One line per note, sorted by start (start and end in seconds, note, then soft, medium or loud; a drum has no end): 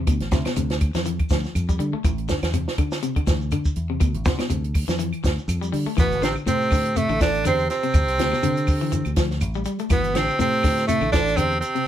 0.07 0.20 D2 medium
0.07 0.30 B2 medium
0.07 kick medium
0.07 closed hi-hat medium
0.07 claves medium
0.07 shekere medium
0.20 0.32 A1 medium
0.20 snare soft
0.20 closed hi-hat soft
0.31 0.45 D2 medium
0.31 0.44 C3 medium
0.31 kick medium
0.31 snare medium
0.31 closed hi-hat soft
0.31 shekere medium
0.45 0.56 B2 medium
0.45 snare medium
0.45 closed hi-hat soft
0.45 claves medium
0.45 shekere soft
0.56 0.93 D2 loud
0.56 0.79 C3 medium
0.56 closed hi-hat medium
0.56 shekere medium
0.70 snare medium
0.70 closed hi-hat soft
0.81 kick medium
0.81 closed hi-hat medium
0.81 claves medium
0.81 shekere soft
0.94 1.18 F2 medium
0.94 1.04 E3 medium
0.94 snare medium
0.94 closed hi-hat soft
0.94 shekere medium
1.05 1.28 E3 medium
1.05 closed hi-hat medium
1.05 shekere medium
1.19 kick medium
1.19 closed hi-hat soft
1.19 claves medium
1.30 1.44 D2 medium
1.30 1.53 F3 medium
1.30 kick medium
1.30 snare medium
1.30 closed hi-hat soft
1.30 shekere medium
1.44 snare soft
1.44 shekere soft
1.55 1.79 F2 medium
1.55 closed hi-hat medium
1.55 claves medium
1.55 shekere medium
1.69 1.78 G3 medium
1.69 kick medium
1.69 closed hi-hat soft
1.69 shekere medium
1.79 1.93 D3 medium
1.79 1.92 G3 medium
1.79 closed hi-hat soft
1.79 shekere soft
1.93 2.03 A3 medium
1.93 muted fingered electric bass stroke soft
2.04 2.28 A1 loud
2.04 2.27 E3 medium
2.04 kick medium
2.04 closed hi-hat medium
2.04 claves medium
2.04 shekere medium
2.18 closed hi-hat soft
2.29 2.51 D3 medium
2.29 kick medium
2.29 snare medium
2.29 closed hi-hat soft
2.29 shekere medium
2.42 2.66 E2 medium
2.42 snare medium
2.42 closed hi-hat soft
2.42 claves medium
2.42 shekere soft
2.53 2.76 C3 medium
2.53 closed hi-hat medium
2.53 shekere medium
2.68 snare medium
2.78 3.00 D3 medium
2.78 kick medium
2.78 closed hi-hat soft
2.78 claves medium
2.78 shekere soft
2.92 snare medium
2.92 shekere medium
3.02 3.15 C3 medium
3.02 closed hi-hat medium
3.02 shekere medium
3.16 3.26 D3 medium
3.16 muted fingered electric bass stroke soft
3.16 kick medium
3.16 closed hi-hat soft
3.16 claves medium
3.27 3.51 D2 medium
3.27 3.49 E3 medium
3.27 kick medium
3.27 snare medium
3.27 closed hi-hat soft
3.27 shekere medium
3.41 shekere soft
3.51 3.74 D3 medium
3.51 closed hi-hat medium
3.51 claves medium
3.51 shekere medium
3.65 kick medium
3.65 shekere medium
3.76 4.00 E2 medium
3.76 closed hi-hat soft
3.76 shekere soft
3.90 4.00 C3 medium
4.00 4.14 D2 medium
4.00 4.23 B2 medium
4.00 kick medium
4.00 closed hi-hat medium
4.00 claves medium
4.00 shekere medium
4.14 4.26 A1 medium
4.14 closed hi-hat soft
4.25 4.39 D2 medium
4.25 4.38 C3 medium
4.25 kick medium
4.25 snare medium
4.25 closed hi-hat soft
4.25 shekere medium
4.38 4.49 B2 medium
4.38 snare medium
4.38 closed hi-hat soft
4.38 claves medium
4.38 shekere soft
4.50 4.87 D2 loud
4.50 4.72 C3 medium
4.50 closed hi-hat medium
4.50 shekere medium
4.64 closed hi-hat soft
4.75 kick medium
4.75 open hi-hat medium
4.75 claves medium
4.75 shekere soft
4.88 5.12 F2 medium
4.88 4.98 E3 medium
4.88 snare medium
4.88 closed hi-hat soft
4.88 shekere medium
4.99 5.21 E3 medium
4.99 closed hi-hat medium
4.99 shekere medium
5.13 closed hi-hat soft
5.13 claves medium
5.24 5.37 D2 medium
5.24 muted clean electric guitar stroke medium
5.24 kick medium
5.24 snare medium
5.24 closed hi-hat medium
5.24 shekere medium
5.38 shekere soft
5.48 5.72 F2 loud
5.48 closed hi-hat medium
5.48 claves medium
5.48 shekere medium
5.61 5.71 G3 medium
5.61 closed hi-hat soft
5.61 shekere medium
5.72 5.86 D3 medium
5.72 5.85 G3 medium
5.72 open hi-hat medium
5.72 shekere soft
5.86 5.96 A3 medium
5.86 muted fingered electric bass stroke soft
5.97 6.12 A1 loud
5.97 6.21 B2 medium
5.97 6.19 E3 medium
5.97 6.21 B3 loud
5.97 6.22 B4 medium
5.97 kick medium
5.97 snare soft
5.97 closed hi-hat medium
5.97 claves medium
5.97 shekere medium
6.10 6.21 G1 medium
6.10 closed hi-hat soft
6.10 shekere soft
6.21 6.35 A1 medium
6.21 6.34 C3 medium
6.21 6.44 D3 medium
6.21 6.35 C4 medium
6.21 6.29 C5 medium
6.21 snare medium
6.21 closed hi-hat soft
6.21 shekere medium
6.36 claves medium
6.36 shekere soft
6.46 7.06 A2 loud
6.46 6.69 C3 medium
6.46 6.99 C3 medium
6.46 6.99 C4 loud
6.46 6.97 C5 medium
6.46 closed hi-hat medium
6.46 shekere medium
6.61 shekere soft
6.71 6.94 D3 medium
6.71 kick medium
6.71 open hi-hat medium
6.71 claves medium
6.71 shekere medium
6.85 closed hi-hat soft
6.85 shekere soft
6.96 7.21 A2 medium
6.96 7.08 C3 medium
6.96 7.21 A3 loud
6.96 7.21 A4 medium
6.96 closed hi-hat medium
6.96 shekere medium
7.09 7.43 A1 medium
7.09 7.19 D3 medium
7.09 claves medium
7.09 shekere soft
7.20 7.44 D3 medium
7.20 7.43 E3 medium
7.20 7.44 D4 loud
7.20 7.45 D5 medium
7.20 kick medium
7.20 snare medium
7.20 closed hi-hat medium
7.20 shekere medium
7.34 closed hi-hat soft
7.34 shekere soft
7.45 7.68 E2 medium
7.45 7.68 C3 medium
7.45 7.67 D3 medium
7.45 7.69 C4 loud
7.45 7.70 C5 medium
7.45 closed hi-hat medium
7.45 claves medium
7.45 shekere medium
7.59 shekere soft
7.70 9.14 C3 medium
7.70 9.13 C4 loud
7.70 9.14 C5 medium
7.70 snare soft
7.70 closed hi-hat soft
7.70 shekere medium
7.83 7.93 C3 medium
7.83 closed hi-hat soft
7.83 shekere soft
7.94 8.07 D2 loud
7.94 muted clean electric guitar stroke loud
7.94 kick medium
7.94 closed hi-hat medium
7.94 claves medium
7.94 shekere medium
8.07 8.18 C2 medium
8.07 closed hi-hat soft
8.07 shekere soft
8.18 8.32 D2 medium
8.18 8.31 C3 medium
8.18 snare medium
8.18 closed hi-hat medium
8.18 shekere medium
8.32 8.42 B2 medium
8.32 snare soft
8.32 claves medium
8.32 shekere soft
8.43 8.65 C3 medium
8.43 9.03 D3 loud
8.43 closed hi-hat medium
8.43 shekere medium
8.56 closed hi-hat soft
8.56 shekere soft
8.67 kick medium
8.67 open hi-hat medium
8.67 claves medium
8.67 shekere medium
8.81 8.91 E3 medium
8.81 shekere soft
8.92 9.14 E3 medium
8.92 closed hi-hat medium
8.92 shekere medium
9.05 9.40 D2 medium
9.05 closed hi-hat soft
9.05 claves medium
9.05 shekere soft
9.16 9.39 F3 medium
9.16 kick medium
9.16 snare medium
9.16 closed hi-hat medium
9.16 shekere medium
9.31 snare soft
9.31 shekere soft
9.40 9.65 A1 loud
9.40 closed hi-hat medium
9.40 claves medium
9.40 shekere medium
9.54 9.65 G3 medium
9.54 shekere soft
9.65 9.78 G3 medium
9.65 closed hi-hat soft
9.65 shekere medium
9.79 9.90 A3 medium
9.79 closed hi-hat soft
9.79 shekere soft
9.90 10.03 A1 medium
9.90 10.16 B2 medium
9.90 10.13 E3 medium
9.90 10.17 B3 medium
9.90 10.16 B4 medium
9.90 kick medium
9.90 snare soft
9.90 closed hi-hat medium
9.90 claves medium
9.90 shekere medium
10.03 10.13 G1 medium
10.03 closed hi-hat soft
10.03 shekere soft
10.14 10.27 A1 medium
10.14 10.39 C3 medium
10.14 10.37 D3 medium
10.14 10.40 C4 medium
10.14 10.39 C5 medium
10.14 snare medium
10.14 closed hi-hat medium
10.14 shekere medium
10.28 claves medium
10.28 shekere soft
10.39 10.99 A2 loud
10.39 10.61 C3 medium
10.39 10.85 C3 medium
10.39 10.86 C4 loud
10.39 10.86 C5 medium
10.39 closed hi-hat medium
10.39 shekere medium
10.53 shekere soft
10.63 10.86 D3 medium
10.63 kick medium
10.63 snare soft
10.63 open hi-hat medium
10.63 claves medium
10.63 shekere medium
10.78 snare soft
10.78 closed hi-hat soft
10.78 shekere soft
10.87 11.11 A2 medium
10.87 11.01 C3 medium
10.87 11.11 A3 medium
10.87 11.11 A4 medium
10.87 closed hi-hat medium
10.87 shekere medium
11.01 11.35 A1 medium
11.01 11.12 D3 medium
11.01 claves medium
11.01 shekere soft
11.11 11.37 D3 medium
11.11 11.35 E3 medium
11.11 11.38 D4 loud
11.11 11.37 D5 medium
11.11 kick medium
11.11 snare medium
11.11 closed hi-hat medium
11.11 shekere medium
11.26 snare soft
11.26 closed hi-hat soft
11.26 shekere soft
11.36 11.61 E2 medium
11.36 11.60 C3 medium
11.36 11.59 D3 medium
11.36 11.60 C4 loud
11.36 11.60 C5 medium
11.36 closed hi-hat medium
11.36 claves medium
11.36 shekere medium
11.51 shekere soft
11.60 11.87 C3 medium
11.60 11.87 C4 loud
11.60 11.87 C5 medium
11.60 closed hi-hat soft
11.60 shekere medium
11.75 11.85 C3 medium
11.75 closed hi-hat soft
11.75 shekere soft